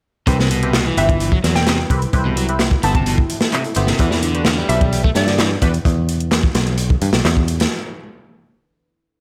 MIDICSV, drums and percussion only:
0, 0, Header, 1, 2, 480
1, 0, Start_track
1, 0, Key_signature, 1, "minor"
1, 0, Tempo, 465116
1, 283, Time_signature, 4, 2, 24, 8
1, 9500, End_track
2, 0, Start_track
2, 0, Title_t, "Drums"
2, 279, Note_on_c, 9, 36, 109
2, 279, Note_on_c, 9, 42, 96
2, 286, Note_off_c, 9, 42, 0
2, 286, Note_on_c, 9, 42, 32
2, 382, Note_off_c, 9, 36, 0
2, 390, Note_off_c, 9, 42, 0
2, 409, Note_on_c, 9, 38, 51
2, 512, Note_off_c, 9, 38, 0
2, 525, Note_on_c, 9, 42, 68
2, 628, Note_off_c, 9, 42, 0
2, 647, Note_on_c, 9, 42, 43
2, 751, Note_off_c, 9, 42, 0
2, 758, Note_on_c, 9, 38, 116
2, 765, Note_on_c, 9, 42, 82
2, 769, Note_off_c, 9, 42, 0
2, 769, Note_on_c, 9, 39, 109
2, 769, Note_on_c, 9, 42, 32
2, 861, Note_off_c, 9, 38, 0
2, 872, Note_off_c, 9, 39, 0
2, 872, Note_off_c, 9, 42, 0
2, 1004, Note_on_c, 9, 42, 70
2, 1009, Note_off_c, 9, 42, 0
2, 1009, Note_on_c, 9, 42, 78
2, 1112, Note_off_c, 9, 42, 0
2, 1123, Note_on_c, 9, 36, 96
2, 1130, Note_on_c, 9, 42, 46
2, 1226, Note_off_c, 9, 36, 0
2, 1234, Note_off_c, 9, 42, 0
2, 1241, Note_on_c, 9, 42, 85
2, 1252, Note_off_c, 9, 42, 0
2, 1252, Note_on_c, 9, 42, 34
2, 1356, Note_off_c, 9, 42, 0
2, 1361, Note_on_c, 9, 36, 103
2, 1464, Note_off_c, 9, 36, 0
2, 1484, Note_on_c, 9, 38, 44
2, 1488, Note_on_c, 9, 42, 77
2, 1489, Note_off_c, 9, 42, 0
2, 1489, Note_on_c, 9, 42, 66
2, 1587, Note_off_c, 9, 38, 0
2, 1592, Note_off_c, 9, 42, 0
2, 1603, Note_on_c, 9, 38, 54
2, 1609, Note_on_c, 9, 42, 43
2, 1706, Note_off_c, 9, 38, 0
2, 1713, Note_off_c, 9, 42, 0
2, 1720, Note_on_c, 9, 38, 116
2, 1721, Note_on_c, 9, 42, 94
2, 1729, Note_off_c, 9, 42, 0
2, 1729, Note_on_c, 9, 39, 107
2, 1729, Note_on_c, 9, 42, 33
2, 1823, Note_off_c, 9, 38, 0
2, 1832, Note_off_c, 9, 39, 0
2, 1832, Note_off_c, 9, 42, 0
2, 1962, Note_on_c, 9, 36, 90
2, 1966, Note_on_c, 9, 42, 76
2, 2065, Note_off_c, 9, 36, 0
2, 2070, Note_off_c, 9, 42, 0
2, 2082, Note_on_c, 9, 42, 43
2, 2088, Note_off_c, 9, 42, 0
2, 2088, Note_on_c, 9, 42, 47
2, 2191, Note_off_c, 9, 42, 0
2, 2200, Note_on_c, 9, 42, 84
2, 2201, Note_on_c, 9, 36, 106
2, 2206, Note_off_c, 9, 42, 0
2, 2206, Note_on_c, 9, 42, 32
2, 2304, Note_off_c, 9, 36, 0
2, 2310, Note_off_c, 9, 42, 0
2, 2446, Note_on_c, 9, 42, 77
2, 2449, Note_off_c, 9, 42, 0
2, 2449, Note_on_c, 9, 42, 68
2, 2553, Note_off_c, 9, 42, 0
2, 2566, Note_on_c, 9, 42, 44
2, 2669, Note_off_c, 9, 42, 0
2, 2677, Note_on_c, 9, 38, 123
2, 2681, Note_on_c, 9, 42, 91
2, 2683, Note_off_c, 9, 42, 0
2, 2683, Note_on_c, 9, 39, 108
2, 2683, Note_on_c, 9, 42, 33
2, 2780, Note_off_c, 9, 38, 0
2, 2786, Note_off_c, 9, 39, 0
2, 2786, Note_off_c, 9, 42, 0
2, 2799, Note_on_c, 9, 36, 95
2, 2903, Note_off_c, 9, 36, 0
2, 2922, Note_on_c, 9, 42, 78
2, 2928, Note_off_c, 9, 42, 0
2, 2928, Note_on_c, 9, 42, 66
2, 3031, Note_off_c, 9, 42, 0
2, 3042, Note_on_c, 9, 36, 93
2, 3043, Note_on_c, 9, 42, 48
2, 3145, Note_off_c, 9, 36, 0
2, 3146, Note_off_c, 9, 42, 0
2, 3160, Note_on_c, 9, 42, 92
2, 3165, Note_off_c, 9, 42, 0
2, 3165, Note_on_c, 9, 42, 35
2, 3268, Note_off_c, 9, 42, 0
2, 3282, Note_on_c, 9, 36, 98
2, 3385, Note_off_c, 9, 36, 0
2, 3403, Note_on_c, 9, 42, 76
2, 3405, Note_off_c, 9, 42, 0
2, 3405, Note_on_c, 9, 42, 78
2, 3508, Note_off_c, 9, 42, 0
2, 3516, Note_on_c, 9, 38, 110
2, 3528, Note_on_c, 9, 42, 45
2, 3619, Note_off_c, 9, 38, 0
2, 3631, Note_off_c, 9, 42, 0
2, 3634, Note_on_c, 9, 42, 87
2, 3647, Note_off_c, 9, 42, 0
2, 3647, Note_on_c, 9, 39, 113
2, 3647, Note_on_c, 9, 42, 34
2, 3750, Note_off_c, 9, 39, 0
2, 3750, Note_off_c, 9, 42, 0
2, 3759, Note_on_c, 9, 42, 42
2, 3862, Note_off_c, 9, 42, 0
2, 3866, Note_on_c, 9, 42, 63
2, 3886, Note_off_c, 9, 42, 0
2, 3886, Note_on_c, 9, 42, 77
2, 3990, Note_off_c, 9, 42, 0
2, 3995, Note_on_c, 9, 38, 50
2, 4007, Note_on_c, 9, 42, 48
2, 4098, Note_off_c, 9, 38, 0
2, 4110, Note_off_c, 9, 42, 0
2, 4115, Note_on_c, 9, 42, 84
2, 4121, Note_on_c, 9, 36, 109
2, 4125, Note_off_c, 9, 42, 0
2, 4125, Note_on_c, 9, 42, 32
2, 4224, Note_off_c, 9, 36, 0
2, 4228, Note_off_c, 9, 42, 0
2, 4242, Note_on_c, 9, 38, 52
2, 4346, Note_off_c, 9, 38, 0
2, 4360, Note_on_c, 9, 42, 65
2, 4364, Note_off_c, 9, 42, 0
2, 4364, Note_on_c, 9, 42, 77
2, 4467, Note_off_c, 9, 42, 0
2, 4486, Note_on_c, 9, 42, 43
2, 4589, Note_off_c, 9, 42, 0
2, 4590, Note_on_c, 9, 38, 119
2, 4603, Note_on_c, 9, 42, 88
2, 4606, Note_off_c, 9, 42, 0
2, 4606, Note_on_c, 9, 39, 110
2, 4606, Note_on_c, 9, 42, 33
2, 4693, Note_off_c, 9, 38, 0
2, 4710, Note_off_c, 9, 39, 0
2, 4710, Note_off_c, 9, 42, 0
2, 4841, Note_on_c, 9, 42, 70
2, 4847, Note_off_c, 9, 42, 0
2, 4847, Note_on_c, 9, 42, 79
2, 4950, Note_off_c, 9, 42, 0
2, 4965, Note_on_c, 9, 36, 101
2, 4966, Note_on_c, 9, 42, 45
2, 5069, Note_off_c, 9, 36, 0
2, 5070, Note_off_c, 9, 42, 0
2, 5083, Note_on_c, 9, 42, 88
2, 5085, Note_off_c, 9, 42, 0
2, 5085, Note_on_c, 9, 42, 34
2, 5188, Note_off_c, 9, 42, 0
2, 5205, Note_on_c, 9, 36, 89
2, 5309, Note_off_c, 9, 36, 0
2, 5314, Note_on_c, 9, 38, 52
2, 5316, Note_on_c, 9, 42, 65
2, 5325, Note_off_c, 9, 42, 0
2, 5325, Note_on_c, 9, 42, 76
2, 5418, Note_off_c, 9, 38, 0
2, 5428, Note_off_c, 9, 42, 0
2, 5439, Note_on_c, 9, 38, 52
2, 5447, Note_on_c, 9, 42, 44
2, 5542, Note_off_c, 9, 38, 0
2, 5550, Note_off_c, 9, 42, 0
2, 5555, Note_on_c, 9, 42, 83
2, 5558, Note_on_c, 9, 38, 117
2, 5564, Note_off_c, 9, 42, 0
2, 5564, Note_on_c, 9, 39, 115
2, 5564, Note_on_c, 9, 42, 34
2, 5661, Note_off_c, 9, 38, 0
2, 5668, Note_off_c, 9, 39, 0
2, 5668, Note_off_c, 9, 42, 0
2, 5797, Note_on_c, 9, 42, 71
2, 5799, Note_on_c, 9, 36, 101
2, 5804, Note_off_c, 9, 42, 0
2, 5804, Note_on_c, 9, 42, 80
2, 5903, Note_off_c, 9, 36, 0
2, 5907, Note_off_c, 9, 42, 0
2, 5922, Note_on_c, 9, 42, 44
2, 5928, Note_off_c, 9, 42, 0
2, 5928, Note_on_c, 9, 42, 46
2, 6031, Note_off_c, 9, 42, 0
2, 6039, Note_on_c, 9, 36, 120
2, 6044, Note_on_c, 9, 42, 31
2, 6045, Note_off_c, 9, 42, 0
2, 6045, Note_on_c, 9, 42, 85
2, 6143, Note_off_c, 9, 36, 0
2, 6148, Note_off_c, 9, 42, 0
2, 6282, Note_on_c, 9, 42, 75
2, 6284, Note_off_c, 9, 42, 0
2, 6284, Note_on_c, 9, 42, 61
2, 6387, Note_off_c, 9, 42, 0
2, 6403, Note_on_c, 9, 42, 43
2, 6506, Note_off_c, 9, 42, 0
2, 6518, Note_on_c, 9, 38, 123
2, 6523, Note_on_c, 9, 39, 114
2, 6523, Note_on_c, 9, 42, 92
2, 6621, Note_off_c, 9, 38, 0
2, 6626, Note_off_c, 9, 39, 0
2, 6627, Note_off_c, 9, 42, 0
2, 6640, Note_on_c, 9, 36, 87
2, 6743, Note_off_c, 9, 36, 0
2, 6755, Note_on_c, 9, 42, 87
2, 6760, Note_on_c, 9, 38, 114
2, 6761, Note_off_c, 9, 42, 0
2, 6761, Note_on_c, 9, 42, 75
2, 6863, Note_off_c, 9, 38, 0
2, 6864, Note_off_c, 9, 42, 0
2, 6881, Note_on_c, 9, 42, 44
2, 6984, Note_off_c, 9, 42, 0
2, 6993, Note_on_c, 9, 42, 99
2, 6999, Note_off_c, 9, 42, 0
2, 6999, Note_on_c, 9, 42, 32
2, 7102, Note_off_c, 9, 42, 0
2, 7123, Note_on_c, 9, 36, 90
2, 7226, Note_off_c, 9, 36, 0
2, 7240, Note_on_c, 9, 42, 81
2, 7241, Note_off_c, 9, 42, 0
2, 7241, Note_on_c, 9, 42, 75
2, 7344, Note_off_c, 9, 42, 0
2, 7356, Note_on_c, 9, 38, 112
2, 7363, Note_on_c, 9, 42, 43
2, 7459, Note_off_c, 9, 38, 0
2, 7467, Note_off_c, 9, 42, 0
2, 7482, Note_on_c, 9, 38, 102
2, 7483, Note_on_c, 9, 39, 111
2, 7483, Note_on_c, 9, 42, 86
2, 7586, Note_off_c, 9, 38, 0
2, 7586, Note_off_c, 9, 39, 0
2, 7586, Note_off_c, 9, 42, 0
2, 7603, Note_on_c, 9, 36, 94
2, 7706, Note_off_c, 9, 36, 0
2, 7718, Note_on_c, 9, 42, 59
2, 7722, Note_off_c, 9, 42, 0
2, 7722, Note_on_c, 9, 42, 71
2, 7825, Note_off_c, 9, 42, 0
2, 7843, Note_on_c, 9, 42, 43
2, 7854, Note_on_c, 9, 38, 109
2, 7947, Note_off_c, 9, 42, 0
2, 7957, Note_off_c, 9, 38, 0
2, 9500, End_track
0, 0, End_of_file